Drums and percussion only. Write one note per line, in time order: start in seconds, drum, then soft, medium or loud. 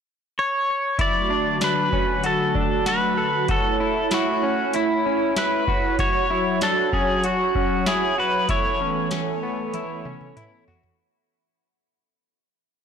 0.99 kick medium
0.99 closed hi-hat medium
1.61 snare loud
1.61 closed hi-hat medium
1.92 kick medium
2.24 closed hi-hat medium
2.55 kick medium
2.86 snare loud
2.86 closed hi-hat medium
3.48 kick loud
3.48 closed hi-hat medium
4.11 snare loud
4.11 closed hi-hat medium
4.73 closed hi-hat medium
5.36 snare loud
5.36 closed hi-hat medium
5.68 kick medium
5.99 kick medium
5.99 closed hi-hat medium
6.61 snare loud
6.61 closed hi-hat medium
6.93 kick medium
7.24 closed hi-hat medium
7.55 kick medium
7.86 snare loud
7.86 closed hi-hat medium
8.49 kick loud
8.49 closed hi-hat medium
9.11 snare loud
9.11 closed hi-hat medium
9.74 closed hi-hat medium
9.74 high tom soft
10.05 mid tom medium
10.21 mid tom medium
10.36 closed hi-hat medium
10.36 mid tom medium
10.68 floor tom medium
10.83 floor tom medium